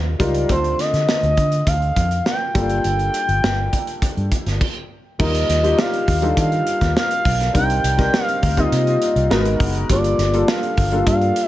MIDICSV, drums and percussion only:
0, 0, Header, 1, 2, 480
1, 0, Start_track
1, 0, Key_signature, -2, "minor"
1, 0, Tempo, 587659
1, 403, Time_signature, 4, 2, 24, 8
1, 9375, End_track
2, 0, Start_track
2, 0, Title_t, "Drums"
2, 162, Note_on_c, 9, 36, 85
2, 163, Note_on_c, 9, 42, 81
2, 243, Note_off_c, 9, 36, 0
2, 245, Note_off_c, 9, 42, 0
2, 281, Note_on_c, 9, 42, 45
2, 363, Note_off_c, 9, 42, 0
2, 402, Note_on_c, 9, 42, 68
2, 403, Note_on_c, 9, 36, 89
2, 484, Note_off_c, 9, 42, 0
2, 485, Note_off_c, 9, 36, 0
2, 525, Note_on_c, 9, 42, 33
2, 607, Note_off_c, 9, 42, 0
2, 647, Note_on_c, 9, 42, 70
2, 650, Note_on_c, 9, 38, 29
2, 728, Note_off_c, 9, 42, 0
2, 732, Note_off_c, 9, 38, 0
2, 766, Note_on_c, 9, 42, 43
2, 769, Note_on_c, 9, 38, 26
2, 847, Note_off_c, 9, 42, 0
2, 851, Note_off_c, 9, 38, 0
2, 887, Note_on_c, 9, 38, 94
2, 968, Note_off_c, 9, 38, 0
2, 1007, Note_on_c, 9, 42, 34
2, 1089, Note_off_c, 9, 42, 0
2, 1121, Note_on_c, 9, 42, 62
2, 1124, Note_on_c, 9, 36, 77
2, 1203, Note_off_c, 9, 42, 0
2, 1205, Note_off_c, 9, 36, 0
2, 1239, Note_on_c, 9, 42, 45
2, 1321, Note_off_c, 9, 42, 0
2, 1362, Note_on_c, 9, 36, 91
2, 1366, Note_on_c, 9, 42, 79
2, 1444, Note_off_c, 9, 36, 0
2, 1447, Note_off_c, 9, 42, 0
2, 1487, Note_on_c, 9, 42, 26
2, 1569, Note_off_c, 9, 42, 0
2, 1605, Note_on_c, 9, 36, 84
2, 1606, Note_on_c, 9, 42, 74
2, 1686, Note_off_c, 9, 36, 0
2, 1687, Note_off_c, 9, 42, 0
2, 1724, Note_on_c, 9, 42, 38
2, 1805, Note_off_c, 9, 42, 0
2, 1846, Note_on_c, 9, 38, 91
2, 1928, Note_off_c, 9, 38, 0
2, 2083, Note_on_c, 9, 36, 102
2, 2084, Note_on_c, 9, 42, 83
2, 2165, Note_off_c, 9, 36, 0
2, 2166, Note_off_c, 9, 42, 0
2, 2201, Note_on_c, 9, 42, 44
2, 2283, Note_off_c, 9, 42, 0
2, 2322, Note_on_c, 9, 42, 68
2, 2404, Note_off_c, 9, 42, 0
2, 2445, Note_on_c, 9, 42, 34
2, 2526, Note_off_c, 9, 42, 0
2, 2565, Note_on_c, 9, 42, 79
2, 2646, Note_off_c, 9, 42, 0
2, 2685, Note_on_c, 9, 42, 41
2, 2767, Note_off_c, 9, 42, 0
2, 2809, Note_on_c, 9, 38, 99
2, 2891, Note_off_c, 9, 38, 0
2, 3045, Note_on_c, 9, 42, 63
2, 3046, Note_on_c, 9, 36, 73
2, 3127, Note_off_c, 9, 42, 0
2, 3128, Note_off_c, 9, 36, 0
2, 3164, Note_on_c, 9, 42, 44
2, 3246, Note_off_c, 9, 42, 0
2, 3284, Note_on_c, 9, 36, 89
2, 3287, Note_on_c, 9, 42, 83
2, 3366, Note_off_c, 9, 36, 0
2, 3369, Note_off_c, 9, 42, 0
2, 3409, Note_on_c, 9, 42, 27
2, 3491, Note_off_c, 9, 42, 0
2, 3525, Note_on_c, 9, 36, 76
2, 3527, Note_on_c, 9, 42, 70
2, 3607, Note_off_c, 9, 36, 0
2, 3609, Note_off_c, 9, 42, 0
2, 3647, Note_on_c, 9, 42, 41
2, 3651, Note_on_c, 9, 38, 30
2, 3729, Note_off_c, 9, 42, 0
2, 3733, Note_off_c, 9, 38, 0
2, 3765, Note_on_c, 9, 36, 90
2, 3767, Note_on_c, 9, 49, 70
2, 3847, Note_off_c, 9, 36, 0
2, 3848, Note_off_c, 9, 49, 0
2, 4245, Note_on_c, 9, 36, 99
2, 4246, Note_on_c, 9, 49, 84
2, 4327, Note_off_c, 9, 36, 0
2, 4328, Note_off_c, 9, 49, 0
2, 4367, Note_on_c, 9, 42, 58
2, 4449, Note_off_c, 9, 42, 0
2, 4489, Note_on_c, 9, 42, 75
2, 4492, Note_on_c, 9, 38, 34
2, 4570, Note_off_c, 9, 42, 0
2, 4574, Note_off_c, 9, 38, 0
2, 4608, Note_on_c, 9, 42, 38
2, 4690, Note_off_c, 9, 42, 0
2, 4726, Note_on_c, 9, 38, 101
2, 4807, Note_off_c, 9, 38, 0
2, 4848, Note_on_c, 9, 42, 43
2, 4930, Note_off_c, 9, 42, 0
2, 4964, Note_on_c, 9, 46, 61
2, 4966, Note_on_c, 9, 36, 80
2, 5046, Note_off_c, 9, 46, 0
2, 5047, Note_off_c, 9, 36, 0
2, 5081, Note_on_c, 9, 42, 51
2, 5163, Note_off_c, 9, 42, 0
2, 5203, Note_on_c, 9, 36, 84
2, 5205, Note_on_c, 9, 42, 91
2, 5285, Note_off_c, 9, 36, 0
2, 5287, Note_off_c, 9, 42, 0
2, 5325, Note_on_c, 9, 42, 37
2, 5407, Note_off_c, 9, 42, 0
2, 5445, Note_on_c, 9, 42, 68
2, 5527, Note_off_c, 9, 42, 0
2, 5564, Note_on_c, 9, 42, 37
2, 5565, Note_on_c, 9, 36, 70
2, 5568, Note_on_c, 9, 38, 32
2, 5645, Note_off_c, 9, 42, 0
2, 5647, Note_off_c, 9, 36, 0
2, 5650, Note_off_c, 9, 38, 0
2, 5690, Note_on_c, 9, 38, 93
2, 5772, Note_off_c, 9, 38, 0
2, 5806, Note_on_c, 9, 42, 54
2, 5888, Note_off_c, 9, 42, 0
2, 5924, Note_on_c, 9, 36, 89
2, 5927, Note_on_c, 9, 46, 82
2, 6006, Note_off_c, 9, 36, 0
2, 6009, Note_off_c, 9, 46, 0
2, 6046, Note_on_c, 9, 42, 44
2, 6052, Note_on_c, 9, 38, 35
2, 6128, Note_off_c, 9, 42, 0
2, 6133, Note_off_c, 9, 38, 0
2, 6165, Note_on_c, 9, 36, 86
2, 6167, Note_on_c, 9, 42, 74
2, 6247, Note_off_c, 9, 36, 0
2, 6248, Note_off_c, 9, 42, 0
2, 6288, Note_on_c, 9, 42, 56
2, 6370, Note_off_c, 9, 42, 0
2, 6406, Note_on_c, 9, 42, 84
2, 6488, Note_off_c, 9, 42, 0
2, 6524, Note_on_c, 9, 36, 85
2, 6525, Note_on_c, 9, 42, 44
2, 6529, Note_on_c, 9, 38, 32
2, 6606, Note_off_c, 9, 36, 0
2, 6607, Note_off_c, 9, 42, 0
2, 6610, Note_off_c, 9, 38, 0
2, 6647, Note_on_c, 9, 38, 108
2, 6728, Note_off_c, 9, 38, 0
2, 6767, Note_on_c, 9, 42, 43
2, 6849, Note_off_c, 9, 42, 0
2, 6883, Note_on_c, 9, 46, 69
2, 6885, Note_on_c, 9, 36, 82
2, 6964, Note_off_c, 9, 46, 0
2, 6967, Note_off_c, 9, 36, 0
2, 7002, Note_on_c, 9, 42, 46
2, 7003, Note_on_c, 9, 36, 68
2, 7084, Note_off_c, 9, 42, 0
2, 7085, Note_off_c, 9, 36, 0
2, 7126, Note_on_c, 9, 42, 85
2, 7207, Note_off_c, 9, 42, 0
2, 7246, Note_on_c, 9, 42, 35
2, 7328, Note_off_c, 9, 42, 0
2, 7365, Note_on_c, 9, 42, 71
2, 7446, Note_off_c, 9, 42, 0
2, 7484, Note_on_c, 9, 42, 40
2, 7566, Note_off_c, 9, 42, 0
2, 7606, Note_on_c, 9, 38, 100
2, 7688, Note_off_c, 9, 38, 0
2, 7722, Note_on_c, 9, 42, 49
2, 7804, Note_off_c, 9, 42, 0
2, 7842, Note_on_c, 9, 36, 96
2, 7845, Note_on_c, 9, 46, 82
2, 7924, Note_off_c, 9, 36, 0
2, 7927, Note_off_c, 9, 46, 0
2, 7962, Note_on_c, 9, 42, 47
2, 8043, Note_off_c, 9, 42, 0
2, 8082, Note_on_c, 9, 42, 84
2, 8083, Note_on_c, 9, 36, 93
2, 8163, Note_off_c, 9, 42, 0
2, 8164, Note_off_c, 9, 36, 0
2, 8203, Note_on_c, 9, 42, 53
2, 8285, Note_off_c, 9, 42, 0
2, 8324, Note_on_c, 9, 42, 73
2, 8328, Note_on_c, 9, 38, 31
2, 8406, Note_off_c, 9, 42, 0
2, 8409, Note_off_c, 9, 38, 0
2, 8443, Note_on_c, 9, 42, 42
2, 8524, Note_off_c, 9, 42, 0
2, 8562, Note_on_c, 9, 38, 105
2, 8643, Note_off_c, 9, 38, 0
2, 8683, Note_on_c, 9, 42, 42
2, 8765, Note_off_c, 9, 42, 0
2, 8799, Note_on_c, 9, 46, 58
2, 8802, Note_on_c, 9, 36, 80
2, 8881, Note_off_c, 9, 46, 0
2, 8884, Note_off_c, 9, 36, 0
2, 8917, Note_on_c, 9, 42, 43
2, 8998, Note_off_c, 9, 42, 0
2, 9039, Note_on_c, 9, 36, 93
2, 9039, Note_on_c, 9, 42, 86
2, 9121, Note_off_c, 9, 36, 0
2, 9121, Note_off_c, 9, 42, 0
2, 9161, Note_on_c, 9, 42, 37
2, 9243, Note_off_c, 9, 42, 0
2, 9279, Note_on_c, 9, 42, 74
2, 9361, Note_off_c, 9, 42, 0
2, 9375, End_track
0, 0, End_of_file